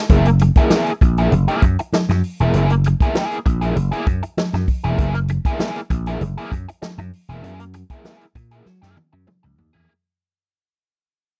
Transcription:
0.09 slap bass F#1, overdriven electric guitar A#3 E4 G#4, kick, closed hi-hat, muted conga
0.25 muted overdriven electric guitar stroke, closed hi-hat
0.39 muted overdriven electric guitar stroke, closed hi-hat, muted conga
0.55 overdriven electric guitar A#3 E4 G#4, kick, closed hi-hat
0.70 overdriven electric guitar A#3 E4 G#4, snare, high conga
0.86 closed hi-hat
1.01 slap bass A#1, muted overdriven electric guitar stroke, kick, closed hi-hat
1.17 overdriven electric guitar A#3 E4 G#4, closed hi-hat
1.32 slap bass F#1, muted overdriven electric guitar stroke, closed hi-hat, muted conga, low conga
1.48 overdriven electric guitar A#3 E4 G#4, closed hi-hat
1.62 slap bass F#2, muted overdriven electric guitar stroke, kick, closed hi-hat, muted conga
1.79 muted overdriven electric guitar stroke, closed hi-hat
1.93 muted overdriven electric guitar stroke, snare, high conga
2.09 slap bass F#2, muted overdriven electric guitar stroke, snare, closed hi-hat, high conga
2.24 open hi-hat
2.39 slap bass E1, overdriven electric guitar A#3 E4 G#4, closed hi-hat
2.54 slap bass F#1, overdriven electric guitar A#3 E4 G#4, closed hi-hat, muted conga
2.70 muted overdriven electric guitar stroke, closed hi-hat
2.84 muted overdriven electric guitar stroke, closed hi-hat, muted conga
3.00 overdriven electric guitar A#3 E4 G#4, kick, closed hi-hat
3.15 overdriven electric guitar A#3 E4 G#4, snare, high conga
3.31 closed hi-hat
3.46 slap bass A#1, muted overdriven electric guitar stroke, kick, closed hi-hat
3.61 overdriven electric guitar A#3 E4 G#4, closed hi-hat
3.76 slap bass F#1, muted overdriven electric guitar stroke, closed hi-hat, muted conga
3.92 overdriven electric guitar A#3 E4 G#4, closed hi-hat
4.07 slap bass F#2, muted overdriven electric guitar stroke, kick, closed hi-hat, muted conga
4.23 muted overdriven electric guitar stroke, closed hi-hat
4.37 muted overdriven electric guitar stroke, snare, high conga
4.53 slap bass F#2, muted overdriven electric guitar stroke, snare, closed hi-hat, high conga
4.68 kick, open hi-hat
4.84 slap bass E1, overdriven electric guitar A#3 E4 G#4, closed hi-hat
4.98 slap bass F#1, overdriven electric guitar A#3 E4 G#4, kick, closed hi-hat
5.15 muted overdriven electric guitar stroke, closed hi-hat
5.28 muted overdriven electric guitar stroke, closed hi-hat, muted conga
5.45 overdriven electric guitar A#3 E4 G#4, kick, closed hi-hat
5.59 overdriven electric guitar A#3 E4 G#4, snare, high conga
5.76 closed hi-hat
5.90 slap bass A#1, muted overdriven electric guitar stroke, kick, closed hi-hat
6.06 overdriven electric guitar A#3 E4 G#4, closed hi-hat
6.21 slap bass F#1, muted overdriven electric guitar stroke, closed hi-hat, muted conga, low conga
6.38 overdriven electric guitar A#3 E4 G#4, closed hi-hat
6.52 slap bass F#2, muted overdriven electric guitar stroke, kick, closed hi-hat, muted conga
6.69 muted overdriven electric guitar stroke, closed hi-hat
6.82 muted overdriven electric guitar stroke, snare, high conga
6.98 slap bass F#2, muted overdriven electric guitar stroke, closed hi-hat, high conga
7.13 open hi-hat
7.29 slap bass E1, overdriven electric guitar A#3 E4 G#4, closed hi-hat
7.43 slap bass F#2, overdriven electric guitar A#3 E4 G#4, closed hi-hat, muted conga
7.60 muted overdriven electric guitar stroke, closed hi-hat
7.73 muted overdriven electric guitar stroke, closed hi-hat, muted conga
7.90 overdriven electric guitar A#3 E4 G#4, kick, closed hi-hat
8.05 overdriven electric guitar A#3 E4 G#4, snare, high conga
8.21 closed hi-hat
8.35 slap bass A#2, muted overdriven electric guitar stroke, kick, closed hi-hat
8.51 overdriven electric guitar A#3 E4 G#4, closed hi-hat
8.66 slap bass F#3, muted overdriven electric guitar stroke, snare, muted conga
8.82 slap bass F#2, overdriven electric guitar A#3 E4 G#4, snare
8.97 muted overdriven electric guitar stroke, high tom, muted conga
9.13 slap bass F#2, muted overdriven electric guitar stroke
9.27 muted overdriven electric guitar stroke, mid tom, high conga
9.43 slap bass C#2, muted overdriven electric guitar stroke, mid tom, high conga
9.58 slap bass D#2, floor tom
9.73 slap bass E2, overdriven electric guitar A#3 E4 G#4, floor tom, high conga

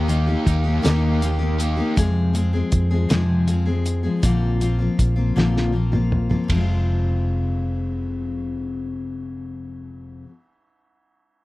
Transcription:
Already playing: fingered electric bass D#2, overdriven electric guitar D#3
0.08 steel-string acoustic guitar D#3 A#3 D#4 G4, overdriven electric guitar A#3 D#4 G4, closed hi-hat
0.27 steel-string acoustic guitar A#3 D#4 G4
0.46 fingered electric bass D#2, overdriven electric guitar D#3 A#3 D#4 G4, kick, closed hi-hat
0.64 steel-string acoustic guitar A#3 D#4 G4
0.82 fingered electric bass D#2, steel-string acoustic guitar D#3 A#3 D#4 G4, overdriven electric guitar D#3 A#3 D#4 G4, snare, closed hi-hat
1.21 steel-string acoustic guitar D#3 A#3 D#4 G4, closed hi-hat
1.39 steel-string acoustic guitar A#3 D#4 G4
1.58 overdriven electric guitar A#3 D#4 G4, closed hi-hat
1.77 steel-string acoustic guitar A#3 D#4 G4
1.96 steel-string acoustic guitar F2 C3 F3 G#3 C4 G#4, fingered electric bass F2, kick, closed hi-hat
2.33 steel-string acoustic guitar F3 G#3 C4 G#4, closed hi-hat
2.53 steel-string acoustic guitar F3 G#3 C4 G#4
2.72 fingered electric bass F2, kick, closed hi-hat
2.91 steel-string acoustic guitar F3 G#3 C4 G#4
3.09 steel-string acoustic guitar F2 C3 F3 G#3 C4 G#4, fingered electric bass F2, snare, closed hi-hat
3.47 steel-string acoustic guitar F3 G#3 C4 G#4, closed hi-hat
3.66 steel-string acoustic guitar G#3 C4 G#4
3.70 steel-string acoustic guitar F3
3.86 closed hi-hat
4.03 steel-string acoustic guitar F3 G#3 C4 G#4
4.23 fingered electric bass A#1, steel-string acoustic guitar A#2 D3 F3 A#3 C4 F4, kick, closed hi-hat
4.60 steel-string acoustic guitar F3 A#3 C4 F4, closed hi-hat
4.79 steel-string acoustic guitar F3 A#3 C4 F4
4.99 fingered electric bass A#1, kick, closed hi-hat
5.16 steel-string acoustic guitar F3 A#3 C4 F4
5.36 fingered electric bass A#1, steel-string acoustic guitar A#2 D3 F3 A#3 C4 F4, snare
5.57 snare
5.72 steel-string acoustic guitar F3 A#3 C4 F4
5.92 steel-string acoustic guitar F3 A#3 C4 F4, mid tom
6.12 mid tom
6.29 steel-string acoustic guitar F3 A#3 C4 F4, floor tom
6.44 steel-string acoustic guitar F2
6.48 fingered electric bass F1, steel-string acoustic guitar C3 F3, kick, ride
6.55 steel-string acoustic guitar G#3 C4
6.61 steel-string acoustic guitar F4

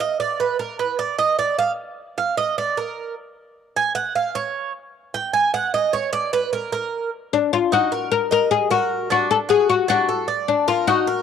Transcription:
0.00 cuban tres D#5
0.20 cuban tres D5
0.40 cuban tres B4
0.60 cuban tres A#4
0.80 cuban tres B4
0.99 cuban tres D5
1.19 cuban tres D#5
1.39 cuban tres D5
1.59 cuban tres F5
2.18 cuban tres F5
2.37 cuban tres D#5
2.58 cuban tres D5
2.77 cuban tres A#4
3.76 cuban tres G#5
3.95 cuban tres F#5
4.15 cuban tres F5
4.35 cuban tres C#5
5.14 cuban tres G5
5.33 cuban tres G#5
5.54 cuban tres F#5
5.74 cuban tres D#5
5.93 cuban tres C#5
6.13 cuban tres D5
6.33 cuban tres B4
6.53 cuban tres A#4
6.72 cuban tres A#4
7.33 oud D4
7.53 oud F4
7.72 cuban tres D#4, oud F#4
7.92 cuban tres A#4
8.11 oud A#4
8.31 oud A#4, cuban tres D#5
8.51 oud G#4
8.71 oud F#4, cuban tres A#4
9.10 cuban tres D4, oud F#4
9.31 oud A4
9.49 cuban tres F#4, oud G#4
9.70 oud F#4
9.88 cuban tres D4, oud F#4
10.09 cuban tres A4
10.28 cuban tres D5
10.48 oud D4
10.68 oud F4, cuban tres A#4
10.87 cuban tres D#4, oud F#4
11.07 cuban tres A#4

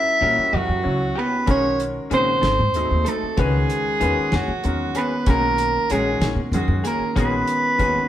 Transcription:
Already playing: grand piano G3 C#4 E4 F#4 A#4, hollow-body jazz guitar E4, soprano saxophone E5
0.21 upright bass A#2, clean electric guitar E3 A#3 C#4 G4, grand piano G3 C#4 E4 F#4 A#4
0.38 muted upright bass stroke
0.53 upright bass F#2, clean electric guitar E3 A#3 C#4 G4, hollow-body jazz guitar F#3, soprano saxophone F#4
0.69 upright bass F#2
0.83 upright bass C#2, grand piano F#3 C#4 E4 F#4 C#5
1.15 clean electric guitar A#3 C#4 G4, hollow-body jazz guitar B3, soprano saxophone B4
1.46 upright bass B1, clean electric guitar D#3 A#3 C#4 G#4, grand piano D#3 G#3 C#4 F#4 A#4, soprano saxophone C#5, kick, closed hi-hat
1.51 hollow-body jazz guitar C#4
1.80 closed hi-hat
2.10 upright bass A#1, grand piano C#3 D#3 G#3 F#4 G#4, clean electric guitar D#3 A#3 C#4 G#4, hollow-body jazz guitar C4, soprano saxophone C5, closed hi-hat
2.42 upright bass G#1, clean electric guitar F#3 C4 D#4 A4, snare, closed hi-hat
2.59 upright bass G#2
2.74 upright bass D#2, grand piano F#3 A3 C4 D#4 G#4, closed hi-hat
2.91 upright bass D#2
3.05 hollow-body jazz guitar A3, clean electric guitar C4 D#4 A4, soprano saxophone A4, closed hi-hat
3.23 muted upright bass stroke
3.37 upright bass C#2, grand piano D#3 G#3 C#4 F#4 B4, clean electric guitar E3 B3 D#4 G#4, hollow-body jazz guitar G#3, soprano saxophone G#4, kick, closed hi-hat
3.70 closed hi-hat
4.00 upright bass E2, grand piano D#3 G#3 C#4 F#4 B4, clean electric guitar E3 B3 D#4 G#4, closed hi-hat
4.17 muted upright bass stroke
4.32 upright bass F#2, clean electric guitar E3 A#3 C#4 G#4, hollow-body jazz guitar F#3, soprano saxophone F#4, snare, closed hi-hat
4.48 upright bass F#2
4.63 upright bass E2, grand piano D#3 G#3 C#4 F#4 A#4, closed hi-hat
4.95 clean electric guitar A#3 C#4 G#4, hollow-body jazz guitar B3, soprano saxophone B4, closed hi-hat
5.26 upright bass B1, clean electric guitar D#3 A#3 C#4 G#4, grand piano D#3 G#3 C#4 F#4 A#4, hollow-body jazz guitar A#3, soprano saxophone A#4, kick, closed hi-hat
5.58 closed hi-hat
5.90 upright bass A#1, clean electric guitar D#3 A#3 C#4 G#4, grand piano D#3 G#3 C#4 F#4 C#5, hollow-body jazz guitar G#3, soprano saxophone G#4, closed hi-hat
6.20 upright bass A#1, clean electric guitar D#3 A#3 C#4 G#4, snare, closed hi-hat
6.36 upright bass B2
6.52 upright bass F#2, grand piano D#3 G#3 C#4 F#4 G#4, hollow-body jazz guitar F#3, closed hi-hat
6.56 soprano saxophone F#4
6.68 upright bass F#2
6.84 clean electric guitar A#3 C#4 G#4, hollow-body jazz guitar A#3, soprano saxophone A#4, closed hi-hat
7.00 muted upright bass stroke
7.16 upright bass A#1, clean electric guitar D#3 A#3 C#4 G#4, grand piano D#3 G#3 C#4 F#4 G#4, hollow-body jazz guitar B3, soprano saxophone B4, kick, closed hi-hat
7.47 closed hi-hat
7.78 upright bass D#2, grand piano D#3 G#3 C#4 F#4 B4, clean electric guitar D#3 A#3 C#4 G#4, kick, closed hi-hat
7.95 muted upright bass stroke

